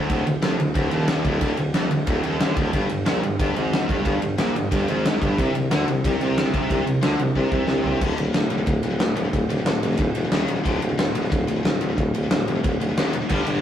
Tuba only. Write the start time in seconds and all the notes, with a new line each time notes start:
0.09 D1
0.26 D1
0.40 F1
0.58 D1
0.75 D1
0.92 D#1
1.24 D1
1.41 D1
1.58 D1
1.76 F1
1.92 D1
2.07 D1
2.24 D#1
2.41 D#1
2.56 D1
2.73 G1
2.91 G1
3.08 A#1
3.24 G1
3.39 G1
3.57 G#1
3.89 G1
4.05 G1
4.22 G1
4.38 A#1
4.56 G1
4.71 G1
4.90 G#1
5.22 G1
5.38 C2
5.55 C2
5.71 D2
5.87 C2
6.04 C2
6.20 C2
6.69 C2
6.86 C2
7.02 D2
7.19 C2
7.35 C2
7.51 C2
7.67 C2
7.85 C2
8.01 D1
8.17 D1
8.35 D1
8.51 D1
8.67 D1
8.84 D1
9.00 D1
9.16 D1
9.33 D1
9.48 D1
9.65 D1
9.81 F1
9.99 D1
10.15 E1
10.31 D#1
10.48 D#1
10.65 D1
10.82 D1
10.99 D1
11.16 D1
11.32 D1
11.48 D1
11.64 D1
11.81 D1
11.97 D1
12.15 D1
12.30 D1
12.47 F1
12.64 D1
12.80 D1
12.96 D#1
13.30 G1
13.46 G1